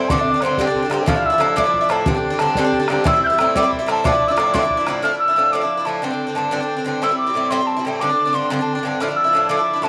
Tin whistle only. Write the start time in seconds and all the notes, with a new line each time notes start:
Already playing: G5
0.10 D6
0.44 C6
0.60 G5
0.92 G5
1.08 F6
1.25 E6
1.51 E6
1.56 D6
1.89 A5
2.07 G5
2.39 A5
2.56 A5
2.60 G5
2.89 G5
3.06 E6
3.23 E6 G6
3.55 D6
3.91 A5
4.05 D6
4.27 E6
4.31 D6
4.53 C6
4.58 D6
5.03 F6
5.18 E6
5.52 D6
5.85 A5
6.03 G5
6.35 A5
6.54 G5
6.86 G5
7.02 E6
7.17 D6
7.50 C6
7.66 A5
7.83 G5
7.99 D6
8.34 C6
8.51 G5
8.62 A5
8.73 G5
8.82 G5
9.00 F6
9.16 E6
9.49 D6
9.83 A5